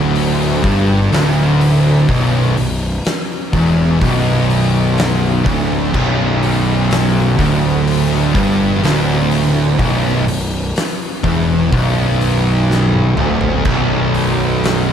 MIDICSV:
0, 0, Header, 1, 4, 480
1, 0, Start_track
1, 0, Key_signature, 2, "minor"
1, 0, Tempo, 964630
1, 1035, Time_signature, 4, 2, 24, 8
1, 7427, End_track
2, 0, Start_track
2, 0, Title_t, "Distorted electric guitar"
2, 0, Program_c, 0, 30
2, 0, Note_on_c, 0, 38, 118
2, 308, Note_off_c, 0, 38, 0
2, 316, Note_on_c, 0, 43, 111
2, 548, Note_off_c, 0, 43, 0
2, 552, Note_on_c, 0, 38, 105
2, 1026, Note_off_c, 0, 38, 0
2, 1037, Note_on_c, 0, 35, 109
2, 1268, Note_off_c, 0, 35, 0
2, 1277, Note_on_c, 0, 35, 79
2, 1468, Note_off_c, 0, 35, 0
2, 1756, Note_on_c, 0, 40, 118
2, 1988, Note_off_c, 0, 40, 0
2, 1992, Note_on_c, 0, 35, 114
2, 2705, Note_off_c, 0, 35, 0
2, 2714, Note_on_c, 0, 38, 106
2, 2946, Note_off_c, 0, 38, 0
2, 2952, Note_on_c, 0, 35, 110
2, 3665, Note_off_c, 0, 35, 0
2, 3669, Note_on_c, 0, 38, 119
2, 4144, Note_off_c, 0, 38, 0
2, 4151, Note_on_c, 0, 43, 94
2, 4389, Note_off_c, 0, 43, 0
2, 4389, Note_on_c, 0, 38, 100
2, 4864, Note_off_c, 0, 38, 0
2, 4868, Note_on_c, 0, 35, 115
2, 5103, Note_off_c, 0, 35, 0
2, 5109, Note_on_c, 0, 35, 73
2, 5303, Note_off_c, 0, 35, 0
2, 5588, Note_on_c, 0, 40, 117
2, 5825, Note_off_c, 0, 40, 0
2, 5831, Note_on_c, 0, 35, 103
2, 6544, Note_off_c, 0, 35, 0
2, 6546, Note_on_c, 0, 38, 101
2, 6785, Note_off_c, 0, 38, 0
2, 6792, Note_on_c, 0, 35, 101
2, 7427, Note_off_c, 0, 35, 0
2, 7427, End_track
3, 0, Start_track
3, 0, Title_t, "Picked electric bass"
3, 0, Program_c, 1, 34
3, 0, Note_on_c, 1, 26, 99
3, 295, Note_off_c, 1, 26, 0
3, 316, Note_on_c, 1, 31, 91
3, 539, Note_off_c, 1, 31, 0
3, 556, Note_on_c, 1, 26, 95
3, 1016, Note_off_c, 1, 26, 0
3, 1038, Note_on_c, 1, 23, 87
3, 1260, Note_off_c, 1, 23, 0
3, 1271, Note_on_c, 1, 23, 82
3, 1496, Note_off_c, 1, 23, 0
3, 1758, Note_on_c, 1, 28, 98
3, 1979, Note_off_c, 1, 28, 0
3, 1999, Note_on_c, 1, 23, 102
3, 2696, Note_off_c, 1, 23, 0
3, 2717, Note_on_c, 1, 26, 100
3, 2938, Note_off_c, 1, 26, 0
3, 2957, Note_on_c, 1, 23, 87
3, 3655, Note_off_c, 1, 23, 0
3, 3677, Note_on_c, 1, 26, 109
3, 4135, Note_off_c, 1, 26, 0
3, 4155, Note_on_c, 1, 31, 100
3, 4377, Note_off_c, 1, 31, 0
3, 4394, Note_on_c, 1, 26, 91
3, 4854, Note_off_c, 1, 26, 0
3, 4873, Note_on_c, 1, 23, 80
3, 5097, Note_off_c, 1, 23, 0
3, 5109, Note_on_c, 1, 23, 74
3, 5335, Note_off_c, 1, 23, 0
3, 5592, Note_on_c, 1, 28, 103
3, 5817, Note_off_c, 1, 28, 0
3, 5833, Note_on_c, 1, 23, 104
3, 6536, Note_off_c, 1, 23, 0
3, 6557, Note_on_c, 1, 26, 88
3, 6781, Note_off_c, 1, 26, 0
3, 6796, Note_on_c, 1, 23, 78
3, 7427, Note_off_c, 1, 23, 0
3, 7427, End_track
4, 0, Start_track
4, 0, Title_t, "Drums"
4, 77, Note_on_c, 9, 46, 83
4, 126, Note_off_c, 9, 46, 0
4, 318, Note_on_c, 9, 36, 112
4, 321, Note_on_c, 9, 46, 66
4, 368, Note_off_c, 9, 36, 0
4, 371, Note_off_c, 9, 46, 0
4, 560, Note_on_c, 9, 46, 83
4, 570, Note_on_c, 9, 38, 119
4, 610, Note_off_c, 9, 46, 0
4, 620, Note_off_c, 9, 38, 0
4, 801, Note_on_c, 9, 46, 61
4, 851, Note_off_c, 9, 46, 0
4, 1039, Note_on_c, 9, 36, 107
4, 1040, Note_on_c, 9, 46, 85
4, 1089, Note_off_c, 9, 36, 0
4, 1090, Note_off_c, 9, 46, 0
4, 1279, Note_on_c, 9, 46, 62
4, 1328, Note_off_c, 9, 46, 0
4, 1516, Note_on_c, 9, 46, 75
4, 1526, Note_on_c, 9, 38, 111
4, 1566, Note_off_c, 9, 46, 0
4, 1576, Note_off_c, 9, 38, 0
4, 1758, Note_on_c, 9, 36, 103
4, 1759, Note_on_c, 9, 46, 62
4, 1808, Note_off_c, 9, 36, 0
4, 1809, Note_off_c, 9, 46, 0
4, 1998, Note_on_c, 9, 36, 103
4, 1998, Note_on_c, 9, 46, 77
4, 2047, Note_off_c, 9, 46, 0
4, 2048, Note_off_c, 9, 36, 0
4, 2240, Note_on_c, 9, 46, 59
4, 2290, Note_off_c, 9, 46, 0
4, 2477, Note_on_c, 9, 46, 88
4, 2487, Note_on_c, 9, 38, 127
4, 2527, Note_off_c, 9, 46, 0
4, 2537, Note_off_c, 9, 38, 0
4, 2717, Note_on_c, 9, 36, 103
4, 2721, Note_on_c, 9, 46, 61
4, 2767, Note_off_c, 9, 36, 0
4, 2770, Note_off_c, 9, 46, 0
4, 2957, Note_on_c, 9, 36, 100
4, 2957, Note_on_c, 9, 49, 97
4, 3007, Note_off_c, 9, 36, 0
4, 3007, Note_off_c, 9, 49, 0
4, 3199, Note_on_c, 9, 46, 60
4, 3248, Note_off_c, 9, 46, 0
4, 3437, Note_on_c, 9, 46, 77
4, 3447, Note_on_c, 9, 38, 116
4, 3487, Note_off_c, 9, 46, 0
4, 3496, Note_off_c, 9, 38, 0
4, 3677, Note_on_c, 9, 36, 104
4, 3681, Note_on_c, 9, 46, 65
4, 3726, Note_off_c, 9, 36, 0
4, 3731, Note_off_c, 9, 46, 0
4, 3918, Note_on_c, 9, 46, 80
4, 3968, Note_off_c, 9, 46, 0
4, 4155, Note_on_c, 9, 36, 108
4, 4157, Note_on_c, 9, 46, 66
4, 4205, Note_off_c, 9, 36, 0
4, 4206, Note_off_c, 9, 46, 0
4, 4396, Note_on_c, 9, 46, 89
4, 4406, Note_on_c, 9, 38, 106
4, 4446, Note_off_c, 9, 46, 0
4, 4456, Note_off_c, 9, 38, 0
4, 4634, Note_on_c, 9, 46, 62
4, 4684, Note_off_c, 9, 46, 0
4, 4872, Note_on_c, 9, 46, 85
4, 4873, Note_on_c, 9, 36, 113
4, 4922, Note_off_c, 9, 46, 0
4, 4923, Note_off_c, 9, 36, 0
4, 5117, Note_on_c, 9, 46, 62
4, 5166, Note_off_c, 9, 46, 0
4, 5354, Note_on_c, 9, 46, 88
4, 5363, Note_on_c, 9, 38, 110
4, 5403, Note_off_c, 9, 46, 0
4, 5413, Note_off_c, 9, 38, 0
4, 5593, Note_on_c, 9, 36, 99
4, 5594, Note_on_c, 9, 46, 59
4, 5643, Note_off_c, 9, 36, 0
4, 5643, Note_off_c, 9, 46, 0
4, 5834, Note_on_c, 9, 36, 113
4, 5836, Note_on_c, 9, 46, 84
4, 5884, Note_off_c, 9, 36, 0
4, 5886, Note_off_c, 9, 46, 0
4, 6076, Note_on_c, 9, 46, 59
4, 6126, Note_off_c, 9, 46, 0
4, 6325, Note_on_c, 9, 38, 72
4, 6375, Note_off_c, 9, 38, 0
4, 6436, Note_on_c, 9, 48, 68
4, 6485, Note_off_c, 9, 48, 0
4, 6554, Note_on_c, 9, 45, 81
4, 6604, Note_off_c, 9, 45, 0
4, 6672, Note_on_c, 9, 43, 82
4, 6722, Note_off_c, 9, 43, 0
4, 6791, Note_on_c, 9, 49, 96
4, 6795, Note_on_c, 9, 36, 104
4, 6841, Note_off_c, 9, 49, 0
4, 6845, Note_off_c, 9, 36, 0
4, 7038, Note_on_c, 9, 46, 59
4, 7088, Note_off_c, 9, 46, 0
4, 7283, Note_on_c, 9, 46, 79
4, 7293, Note_on_c, 9, 38, 113
4, 7333, Note_off_c, 9, 46, 0
4, 7342, Note_off_c, 9, 38, 0
4, 7427, End_track
0, 0, End_of_file